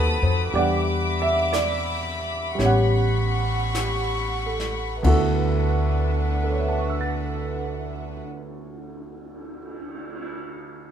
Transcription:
Already playing: D#2 A3 C4 D#4 F#4 A4 B4 A5 B5 D#6
0.22 F2 C5
0.51 E2 G3 G4 E5 B5 D6, brush sweep
0.55 B3 D4 D5 F#5
1.22 E5
1.53 D5, snare, hi-hat pedal
2.55 A1 G3 B3 C#5
2.59 C#4 G4 F#5 C#6, brush sweep, snare
2.66 F#5
3.75 G4, snare, hi-hat pedal
4.46 A4
4.60 snare
5.03 D2 D3 B3 D4 E4 F#4 B4 E5 F#5, kick, ride
5.07 A4
5.97 cymbal swell
6.43 A4
6.50 C#5
6.59 E5
6.69 A5
6.78 C#6
6.90 E6
7.01 A6

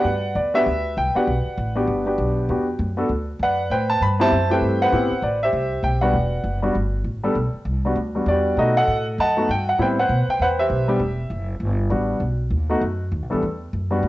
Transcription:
Already playing: B4 D5 F#5
0.04 G2
0.35 E2 D5
0.54 B3 D4 F#4 G4 B4 E5
0.66 D2
0.97 C2 G5
1.15 B3 D4 F#4 G4 B4 D5 F#5, muted upright bass stroke
1.27 B1
1.46 muted upright bass stroke
1.58 A1
1.76 B3 D4 F#4 G4
1.88 G1
2.06 B3 D4 F#4 G4
2.18 B1
2.49 E2 B3 D4 F#4 G4
2.79 F#2
2.97 B3 D4 F#4 A4
3.09 D2
3.39 F#2 B4 D5 F#5
3.70 A2 B4 C5 G5
3.90 A5
4.01 G2 B5
4.20 B3 C4 E4 G4 C5 E5 A5
4.32 F#2
4.49 A3 C4 E4 G4 B4 C5 G5
4.61 G2
4.82 B4 C5 F#5
4.92 A2 B3 C4 E4 G4
5.11 muted upright bass stroke
5.22 A1 D5
5.43 G4 C5 E5
5.53 C2
5.83 B1 G5
6.01 G3 B3 D4 F#4 B4 D5 F#5
6.13 E1
6.44 F#1
6.62 G3 B3 D4 F#4
6.75 G1
7.04 A1
7.23 G3 B3 D4 A4
7.35 B1
7.54 muted upright bass stroke
7.65 C2
7.85 G3 B3 D4 F#4
7.96 D2
8.15 G3 B3 D4 F#4
8.26 E2 F#4 G4 D5
8.57 B2 A3 B3 D#4 F#4 A4 D#5
8.77 A4 D#5 F#5
8.87 A2
9.18 F#2 D#5 F#5 A5
9.37 A3 B3 D#4 F#4
9.49 G2 G5
9.69 F#5
9.78 A2 G3 B3 C4 E4 B4 C5 G5
9.99 B4 C5 F#5
10.09 B2
10.28 G5, muted upright bass stroke
10.39 E2 B4 C5 F#5
10.59 G4 C5 E5
10.70 B1
10.88 G3 B3 D4 G4
11.00 E1
11.30 F#1
11.60 G1
11.90 A1 G3 B3 D4 F#4
12.20 B1
12.50 D#2
12.70 A3 B3 D#4 F#4
12.81 F#2
13.12 D#2
13.22 B1
13.30 A1 E2 G3 B3 D4 A4
13.43 E2
13.73 F#2
13.90 G3 B3 D4 F#4
14.03 G2

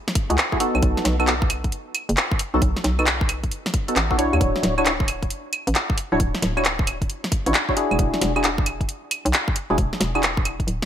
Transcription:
0.08 snare
0.15 kick, open hi-hat
0.30 C#2 A3 E4 F#4 G#4, closed hi-hat
0.38 clap, open hi-hat
0.52 A3 E4 F#4 G#4, kick
0.60 B3 D#4 F#4 A4, open hi-hat
0.75 B1, claves
0.82 B1, kick, closed hi-hat
0.97 snare
1.05 B1, snare, open hi-hat
1.19 B3 D#4 F#4 A4, claves
1.27 clap, closed hi-hat
1.42 kick
1.50 open hi-hat, claves
1.64 kick, closed hi-hat
1.72 closed hi-hat
1.95 open hi-hat, claves
2.09 F#1, closed hi-hat
2.17 clap, closed hi-hat
2.32 kick
2.39 open hi-hat
2.54 B1 B3 D#4 F#4 A4
2.62 B1, kick, closed hi-hat
2.77 snare
2.84 B1, snare, open hi-hat
2.99 B3 D#4 F#4 A4, claves
3.07 clap, closed hi-hat
3.21 kick
3.29 open hi-hat, claves
3.44 kick, closed hi-hat
3.51 closed hi-hat
3.66 snare
3.74 kick, open hi-hat
3.88 B3 D#4 F#4 A4, closed hi-hat
3.96 A1, clap, open hi-hat
4.11 B3 D#4 F#4 A4, kick
4.18 B1 D4 E4 F#4 C#5, open hi-hat
4.33 D#2, claves
4.41 D1, kick, closed hi-hat
4.56 snare
4.63 D1, snare, open hi-hat
4.78 D4 E4 F#4 C#5, claves
4.86 clap, closed hi-hat
5.00 kick
5.08 open hi-hat, claves
5.23 kick, closed hi-hat
5.30 closed hi-hat
5.53 open hi-hat, claves
5.67 A1, closed hi-hat
5.75 clap, closed hi-hat
5.90 kick
5.98 open hi-hat
6.12 D1 D4 E4 F#4 C#5
6.20 D1, kick, closed hi-hat
6.35 snare
6.42 D1, snare, open hi-hat
6.57 D4 E4 F#4 C#5, claves
6.65 clap, closed hi-hat
6.79 kick
6.87 open hi-hat, claves
7.02 kick, closed hi-hat
7.10 closed hi-hat
7.24 snare
7.32 kick, open hi-hat
7.46 A1 D4 E4 F#4 C#5, closed hi-hat
7.54 clap, open hi-hat
7.69 D4 E4 F#4 C#5, kick
7.77 D4 E4 F#4 G#4, open hi-hat
7.91 E1, claves
7.99 E1, kick, closed hi-hat
8.14 snare
8.21 E1, snare, open hi-hat
8.36 D4 E4 F#4 G#4, claves
8.44 clap, closed hi-hat
8.58 kick
8.66 open hi-hat, claves
8.81 kick, closed hi-hat
8.89 closed hi-hat
9.11 open hi-hat, claves
9.25 B1, closed hi-hat
9.33 clap, closed hi-hat
9.48 kick
9.56 open hi-hat
9.70 E1 D4 E4 F#4 G#4
9.78 E1, kick, closed hi-hat
9.93 snare
10.00 E1, snare, open hi-hat
10.15 D4 E4 F#4 G#4, claves
10.23 clap, closed hi-hat
10.37 kick
10.45 open hi-hat, claves
10.60 kick, closed hi-hat
10.67 D1, closed hi-hat

